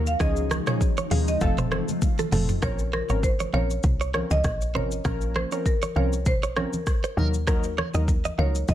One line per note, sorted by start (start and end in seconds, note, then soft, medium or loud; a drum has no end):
0.00 0.16 D#2 loud
0.00 0.17 D#3 medium
0.00 0.17 F#3 medium
0.00 0.16 A#3 medium
0.00 0.17 F#4 loud
0.07 0.13 F5 loud
0.07 shaker medium
0.20 0.60 C#2 loud
0.20 1.40 C#3 medium
0.20 0.63 F3 medium
0.20 2.60 F3 medium
0.20 1.40 G#3 medium
0.20 0.63 C#4 medium
0.20 1.40 D#4 medium
0.20 0.63 D#4 medium
0.20 0.63 G#4 loud
0.20 0.31 G#4 medium
0.20 0.69 D#5 loud
0.20 kick loud
0.20 cross-stick medium
0.20 shaker medium
0.36 shaker medium
0.51 0.61 A#4 medium
0.51 cross-stick medium
0.51 high conga medium
0.51 shaker medium
0.67 0.81 F3 medium
0.67 0.81 C#4 medium
0.67 0.81 D#4 medium
0.67 0.81 G#4 medium
0.67 0.76 C#5 medium
0.67 1.30 C#5 medium
0.67 cross-stick loud
0.67 mid tom loud
0.67 shaker medium
0.81 kick loud
0.81 shaker medium
0.97 1.06 C#5 medium
0.97 high conga medium
0.97 shaker soft
1.11 1.37 D#2 medium
1.11 1.28 F3 medium
1.11 1.28 C#4 medium
1.11 1.28 D#4 medium
1.11 1.28 G#4 medium
1.11 1.21 F5 medium
1.11 open hi-hat medium
1.11 high conga medium
1.11 low conga medium
1.28 1.41 D#5 medium
1.28 shaker medium
1.41 1.82 F1 loud
1.41 2.61 C3 medium
1.41 1.69 F3 loud
1.41 1.69 A3 medium
1.41 2.61 A3 medium
1.41 1.70 C4 medium
1.41 2.61 F4 medium
1.41 1.70 A4 loud
1.41 1.98 F5 medium
1.41 kick loud
1.41 low conga medium
1.41 shaker medium
1.58 1.67 C5 medium
1.58 mid tom loud
1.58 shaker soft
1.71 1.88 F3 medium
1.71 1.88 A3 medium
1.71 1.88 C4 medium
1.71 1.89 A4 medium
1.71 1.82 C5 medium
1.71 cross-stick medium
1.71 high conga medium
1.88 high conga medium
1.88 shaker medium
2.02 kick loud
2.02 high tom medium
2.02 high conga medium
2.02 shaker medium
2.19 2.27 A4 medium
2.19 mid tom medium
2.19 shaker soft
2.32 2.58 F1 loud
2.32 2.49 F3 medium
2.32 2.49 A3 medium
2.32 2.49 C4 medium
2.32 2.49 A4 medium
2.32 2.43 A4 medium
2.32 mid tom loud
2.32 open hi-hat medium
2.32 high conga medium
2.32 low conga medium
2.32 shaker medium
2.49 floor tom medium
2.49 shaker medium
2.62 3.03 A#1 loud
2.62 2.79 F3 medium
2.62 2.79 C4 medium
2.62 2.79 C#4 medium
2.62 2.79 A#4 loud
2.62 2.73 A#4 medium
2.62 2.91 C#5 loud
2.62 kick loud
2.62 cross-stick medium
2.62 shaker medium
2.79 shaker soft
2.93 3.21 A#4 medium
2.93 3.03 C5 medium
2.93 cross-stick medium
2.93 high conga medium
3.09 3.47 G#1 medium
3.09 3.23 F3 medium
3.09 3.23 C4 medium
3.09 3.23 C#4 medium
3.09 3.23 A#4 medium
3.09 3.18 C#5 medium
3.09 shaker soft
3.23 3.52 C5 medium
3.23 kick loud
3.23 shaker medium
3.40 3.48 C#5 medium
3.40 high conga medium
3.40 shaker soft
3.53 3.79 A#1 medium
3.53 3.70 F3 medium
3.53 3.70 C4 medium
3.53 3.70 C#4 medium
3.53 3.70 A#4 medium
3.53 4.33 C#5 loud
3.53 3.64 F5 medium
3.53 high conga medium
3.70 shaker medium
3.83 4.24 C2 loud
3.83 kick loud
3.83 low conga medium
3.83 shaker medium
4.01 4.09 C#5 medium
4.01 shaker soft
4.14 4.31 F3 medium
4.14 4.31 C4 medium
4.14 4.31 C#4 medium
4.14 4.31 A#4 medium
4.14 4.24 C#5 medium
4.14 cross-stick medium
4.14 high conga medium
4.31 4.42 C#2 medium
4.31 4.76 D#5 loud
4.31 high conga medium
4.31 shaker medium
4.44 4.76 A#1 medium
4.44 kick loud
4.44 cross-stick medium
4.44 shaker medium
4.61 shaker soft
4.74 5.01 G#1 loud
4.74 4.91 F3 medium
4.74 4.91 C4 medium
4.74 4.91 C#4 medium
4.74 4.92 A#4 medium
4.74 4.85 C5 medium
4.74 5.37 C#5 loud
4.74 high conga medium
4.74 low conga medium
4.91 shaker medium
5.05 5.45 A#1 loud
5.05 5.48 F3 medium
5.05 5.48 A#3 medium
5.05 5.48 C#4 medium
5.05 5.48 A#4 loud
5.05 5.15 A#4 medium
5.05 kick loud
5.05 cross-stick medium
5.05 shaker medium
5.21 shaker soft
5.36 5.67 C5 medium
5.36 5.46 C5 medium
5.36 cross-stick medium
5.36 high conga medium
5.52 5.65 F3 medium
5.52 5.66 C4 medium
5.52 5.66 C#4 medium
5.52 5.66 A#4 medium
5.52 5.61 C#5 medium
5.52 shaker soft
5.66 5.97 A#4 medium
5.66 kick loud
5.66 shaker medium
5.82 5.91 C#5 medium
5.82 high conga medium
5.82 shaker soft
5.96 6.28 C2 medium
5.96 6.12 F3 medium
5.96 6.13 C4 medium
5.96 6.13 C#4 medium
5.96 6.13 A#4 medium
5.96 6.27 C#5 medium
5.96 6.06 F5 medium
5.96 high conga medium
6.13 shaker medium
6.26 6.66 A#1 loud
6.26 6.55 C5 medium
6.26 kick loud
6.26 low conga medium
6.26 shaker medium
6.43 6.51 C#5 medium
6.43 shaker soft
6.56 6.73 F3 medium
6.56 6.73 C4 medium
6.56 6.73 C#4 medium
6.56 6.73 A#4 medium
6.56 7.13 A#4 medium
6.56 6.67 C#5 medium
6.56 cross-stick medium
6.56 high conga medium
6.73 high conga medium
6.73 shaker medium
6.87 kick loud
6.87 cross-stick medium
6.87 shaker medium
7.04 7.18 C5 medium
7.04 shaker soft
7.17 7.83 D#2 loud
7.17 7.34 F#3 medium
7.17 7.34 A#3 medium
7.17 7.34 D#4 medium
7.17 7.34 A#4 medium
7.17 7.27 A#4 medium
7.17 high conga medium
7.17 low conga medium
7.34 shaker medium
7.47 7.64 F#3 medium
7.47 7.64 A#3 medium
7.47 7.64 D#4 medium
7.47 7.64 A#4 loud
7.47 7.58 A#4 medium
7.47 kick loud
7.47 cross-stick medium
7.47 shaker medium
7.64 shaker soft
7.78 7.88 C#5 medium
7.78 cross-stick medium
7.78 high conga medium
7.94 8.32 D#2 medium
7.94 8.08 F#3 medium
7.94 8.08 A#3 medium
7.94 8.08 D#4 medium
7.94 8.08 A#4 medium
7.94 8.03 D#5 medium
7.94 shaker soft
8.08 kick medium
8.08 shaker medium
8.25 8.33 D#5 medium
8.25 high conga medium
8.25 shaker soft
8.38 8.64 C#2 medium
8.38 8.55 F#3 medium
8.38 8.55 A#3 medium
8.38 8.55 D#4 medium
8.38 8.55 A#4 medium
8.38 8.67 C#5 medium
8.38 8.49 F5 medium
8.38 high conga medium
8.55 shaker medium
8.68 8.74 D#2 loud
8.68 8.74 D#5 loud
8.68 kick loud
8.68 low conga medium
8.68 shaker medium